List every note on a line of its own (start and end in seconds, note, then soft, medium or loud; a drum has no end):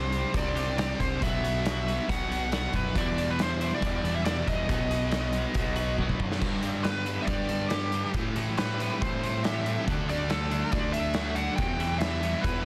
0.00 0.24 C2 medium
0.00 0.32 C3 medium
0.00 0.33 G3 medium
0.00 0.34 G3 medium
0.00 0.13 C4 medium
0.00 0.34 C4 medium
0.00 0.12 D4 medium
0.00 0.11 G4 medium
0.00 0.37 C5 medium
0.12 0.57 C4 medium
0.12 0.56 D4 medium
0.12 0.54 G4 medium
0.12 closed hi-hat medium
0.33 0.53 C2 medium
0.33 1.19 C3 medium
0.33 1.20 G3 medium
0.33 1.21 C4 medium
0.33 kick loud
0.33 closed hi-hat medium
0.37 0.77 D5 medium
0.55 0.94 C2 medium
0.55 0.78 C4 medium
0.55 0.79 D4 medium
0.55 0.79 G4 medium
0.55 closed hi-hat medium
0.77 1.20 C3 medium
0.77 1.20 G3 medium
0.77 1.21 C4 loud
0.77 1.21 D4 medium
0.77 1.21 G4 loud
0.77 1.01 D5 medium
0.77 snare loud
0.77 closed hi-hat medium
0.99 1.19 C2 medium
0.99 1.20 C5 medium
0.99 kick medium
0.99 snare soft
0.99 closed hi-hat medium
1.20 1.98 B1 medium
1.20 2.07 B2 medium
1.20 1.65 B2 medium
1.20 2.07 F#3 loud
1.20 1.64 F#3 loud
1.20 1.46 B3 medium
1.20 2.11 B3 loud
1.20 1.42 F#4 loud
1.20 2.12 E5 loud
1.20 kick loud
1.20 closed hi-hat medium
1.44 1.66 B3 medium
1.44 1.67 F#4 medium
1.44 closed hi-hat medium
1.65 2.09 F#3 medium
1.65 1.90 B3 medium
1.65 1.86 F#4 medium
1.65 snare loud
1.65 closed hi-hat medium
1.87 2.32 B3 medium
1.87 2.30 D#4 medium
1.87 2.29 F#4 medium
1.87 closed hi-hat medium
2.08 2.66 B1 loud
2.08 2.94 B2 medium
2.08 2.95 F#3 medium
2.08 4.70 B3 medium
2.08 2.51 F#5 medium
2.08 kick loud
2.08 closed hi-hat medium
2.30 2.53 B3 medium
2.30 2.53 D#4 medium
2.30 2.54 F#4 medium
2.30 closed hi-hat medium
2.52 2.95 B2 loud
2.52 2.95 F#3 medium
2.52 2.97 B3 loud
2.52 2.96 D#4 loud
2.52 2.96 F#4 loud
2.52 2.75 F#5 medium
2.52 snare loud
2.52 closed hi-hat medium
2.73 2.93 F#2 medium
2.73 2.97 B4 medium
2.73 kick medium
2.73 closed hi-hat medium
2.95 3.79 E2 medium
2.95 3.72 E2 medium
2.95 3.39 E2 medium
2.95 3.81 B2 medium
2.95 3.40 B2 medium
2.95 3.19 E3 loud
2.95 3.83 E3 loud
2.95 3.18 G3 medium
2.95 3.17 D4 loud
2.95 3.16 E4 loud
2.95 3.30 D5 medium
2.95 kick loud
2.95 closed hi-hat medium
3.17 3.38 E3 medium
3.17 3.39 G3 medium
3.17 3.40 D4 medium
3.17 3.41 E4 medium
3.17 closed hi-hat medium
3.31 3.40 B4 medium
3.39 3.62 E3 medium
3.39 3.61 G3 medium
3.39 3.61 D4 medium
3.39 3.60 E4 medium
3.39 3.71 C5 loud
3.39 snare loud
3.39 closed hi-hat medium
3.61 4.05 E3 medium
3.61 4.05 G3 medium
3.61 4.03 D4 medium
3.61 4.02 E4 medium
3.61 closed hi-hat medium
3.75 4.15 D5 medium
3.80 4.67 E2 medium
3.80 4.01 E2 medium
3.80 4.66 B2 medium
3.80 4.69 E3 medium
3.80 kick loud
3.80 closed hi-hat medium
4.03 4.42 E2 medium
4.03 4.25 E3 medium
4.03 4.25 G3 medium
4.03 4.26 D4 medium
4.03 4.26 E4 medium
4.03 closed hi-hat medium
4.15 4.25 E5 medium
4.25 4.68 E2 loud
4.25 4.67 B2 loud
4.25 4.68 E3 loud
4.25 4.68 G3 loud
4.25 4.69 D4 loud
4.25 4.69 E4 loud
4.25 4.48 D5 medium
4.25 snare loud
4.25 closed hi-hat medium
4.47 4.67 E2 medium
4.47 5.95 D#5 medium
4.47 kick medium
4.47 closed hi-hat medium
4.67 5.45 B1 loud
4.67 5.54 B2 medium
4.67 5.12 B2 medium
4.67 5.55 F#3 loud
4.67 5.11 F#3 loud
4.67 4.92 B3 loud
4.67 5.55 B3 medium
4.67 4.91 D#4 loud
4.67 kick loud
4.67 closed hi-hat medium
4.71 4.89 F#4 loud
4.90 5.12 B3 medium
4.90 5.13 D#4 medium
4.90 5.13 F#4 medium
4.90 closed hi-hat medium
5.12 5.56 F#3 medium
5.12 5.35 B3 medium
5.12 5.34 D#4 medium
5.12 5.32 F#4 medium
5.12 snare loud
5.12 closed hi-hat medium
5.33 5.78 B3 medium
5.33 5.77 D#4 medium
5.33 5.75 F#4 medium
5.33 closed hi-hat medium
5.54 6.12 B1 loud
5.54 6.41 B2 medium
5.54 6.41 F#3 medium
5.54 6.42 B3 medium
5.54 kick loud
5.54 closed hi-hat medium
5.76 5.98 B3 medium
5.76 5.99 D#4 medium
5.76 5.99 F#4 medium
5.76 closed hi-hat medium
5.98 6.40 B2 loud
5.98 6.41 F#3 medium
5.98 6.41 B3 loud
5.98 6.42 D#4 medium
5.98 6.42 F#4 loud
5.98 kick medium
6.09 kick medium
6.19 6.39 F#2 loud
6.19 kick medium
6.32 snare medium
6.40 6.62 G2 medium
6.40 7.17 G2 medium
6.40 7.50 G2 medium
6.40 6.62 D3 medium
6.40 6.64 G3 loud
6.40 kick loud
6.40 crash loud
6.63 6.83 G2 medium
6.63 6.84 D3 medium
6.63 7.26 G3 medium
6.63 6.85 G3 medium
6.63 closed hi-hat medium
6.84 7.05 G2 medium
6.84 7.05 D3 medium
6.84 7.07 G3 medium
6.84 7.93 B3 medium
6.84 7.22 B4 medium
6.84 snare loud
6.84 closed hi-hat medium
7.06 7.27 G2 medium
7.06 7.27 D3 medium
7.06 7.27 G3 medium
7.06 7.49 D4 medium
7.06 closed hi-hat medium
7.22 7.71 D5 medium
7.22 7.29 E5 medium
7.27 8.03 G2 medium
7.27 7.49 G2 medium
7.27 7.50 D3 loud
7.27 8.14 G3 medium
7.27 7.50 G3 medium
7.27 kick loud
7.27 closed hi-hat medium
7.49 7.70 G2 medium
7.49 7.71 D3 medium
7.49 7.71 G3 medium
7.49 7.92 D4 medium
7.49 closed hi-hat medium
7.69 7.93 G2 medium
7.69 7.93 D3 medium
7.69 7.94 G3 medium
7.69 8.10 G4 medium
7.69 8.15 G4 medium
7.69 snare loud
7.69 closed hi-hat medium
7.92 8.14 G2 medium
7.92 8.14 D3 medium
7.92 8.14 G3 medium
7.92 8.15 D4 medium
7.92 closed hi-hat medium
8.14 8.90 A2 loud
8.14 8.35 A2 medium
8.14 9.22 A2 medium
8.14 8.35 E3 loud
8.14 8.37 A3 medium
8.14 kick loud
8.14 closed hi-hat medium
8.36 8.57 A2 medium
8.36 8.57 E3 medium
8.36 9.01 E3 medium
8.36 8.59 A3 loud
8.36 closed hi-hat medium
8.58 8.78 A2 medium
8.58 8.79 E3 medium
8.58 9.66 G3 medium
8.58 8.81 A3 medium
8.58 9.02 B4 medium
8.58 snare loud
8.58 closed hi-hat medium
8.80 9.00 A2 medium
8.80 9.00 E3 medium
8.80 9.01 A3 medium
8.80 9.23 C4 medium
8.80 closed hi-hat medium
9.01 9.22 A2 medium
9.01 9.77 A2 medium
9.01 9.23 E3 medium
9.01 9.87 E3 medium
9.01 9.23 A3 loud
9.01 9.46 C5 medium
9.01 kick loud
9.01 closed hi-hat medium
9.23 9.43 A2 medium
9.23 9.44 E3 medium
9.23 9.44 A3 medium
9.23 9.65 C4 medium
9.23 closed hi-hat medium
9.43 9.65 A2 medium
9.43 9.65 E3 medium
9.43 9.66 A3 loud
9.43 9.87 G4 medium
9.43 9.83 E5 medium
9.43 snare loud
9.43 closed hi-hat medium
9.66 9.86 A2 medium
9.66 9.86 E3 medium
9.66 9.86 A3 medium
9.66 9.87 C4 medium
9.66 closed hi-hat medium
9.87 10.62 D2 medium
9.87 10.08 D3 loud
9.87 10.07 D3 medium
9.87 10.08 A3 medium
9.87 10.09 D4 loud
9.87 kick loud
9.87 closed hi-hat medium
10.09 10.72 D3 medium
10.09 10.29 D3 medium
10.09 10.29 A3 medium
10.09 10.30 D4 medium
10.09 10.31 D5 medium
10.09 closed hi-hat medium
10.30 10.49 D3 medium
10.30 10.50 A3 medium
10.30 11.37 A3 medium
10.30 10.50 D4 medium
10.30 10.74 A4 medium
10.30 snare loud
10.30 closed hi-hat medium
10.50 10.71 D3 medium
10.50 10.71 A3 medium
10.50 10.72 D4 loud
10.50 10.94 D4 medium
10.50 closed hi-hat medium
10.72 11.48 D2 medium
10.72 10.93 D3 loud
10.72 11.59 D3 medium
10.72 10.93 A3 medium
10.72 10.94 D4 loud
10.72 10.92 D5 medium
10.72 kick loud
10.72 closed hi-hat medium
10.93 11.13 D3 medium
10.93 11.14 A3 medium
10.93 11.36 D4 medium
10.93 11.15 D4 medium
10.93 11.38 E5 loud
10.93 closed hi-hat medium
11.14 11.35 D3 medium
11.14 11.35 A3 medium
11.14 11.36 D4 loud
11.14 11.58 F#4 medium
11.14 snare loud
11.14 closed hi-hat medium
11.35 11.57 D3 medium
11.35 11.57 A3 medium
11.35 11.58 D4 medium
11.35 11.57 D4 medium
11.35 11.55 F#5 loud
11.35 closed hi-hat medium
11.56 11.79 E2 loud
11.56 12.34 E2 loud
11.56 12.65 E2 medium
11.56 11.79 B2 loud
11.56 11.80 E3 loud
11.56 12.01 G5 loud
11.56 kick loud
11.56 closed hi-hat medium
11.80 11.99 E2 medium
11.80 11.99 B2 medium
11.80 12.42 E3 medium
11.80 12.00 E3 medium
11.80 closed hi-hat medium
11.98 12.20 E2 medium
11.98 12.21 B2 medium
11.98 12.22 E3 medium
11.98 12.65 G3 medium
11.98 12.44 E5 loud
11.98 snare loud
11.98 closed hi-hat medium
12.22 12.41 E2 medium
12.22 12.42 B2 medium
12.22 12.42 E3 medium
12.22 12.64 B3 medium
12.22 closed hi-hat medium
12.41 12.64 E2 medium
12.41 12.65 E2 loud
12.41 12.65 B2 loud
12.41 12.65 E3 medium
12.41 12.65 B4 medium
12.41 kick loud
12.41 closed hi-hat medium